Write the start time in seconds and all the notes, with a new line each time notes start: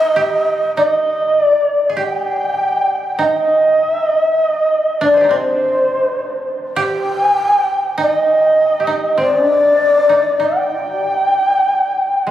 Already playing: D#4 D#5
0.16 G4
0.76 D#4 D#5
1.44 D5
1.90 G#4
1.97 G4 G5
3.19 D#4 D#5
3.86 E5
4.04 D#5
4.22 E5
4.40 D#5
5.01 D4 D5
5.14 G#4 C5
5.21 D#4 G4
5.29 C4 D4
5.34 C5
6.76 G4
6.81 G5
7.98 D#4 D#5
8.80 G4
8.87 D#4
9.18 C4 D5
9.44 D4
10.09 D#4
10.40 D#4 G5
10.99 G4
12.27 C4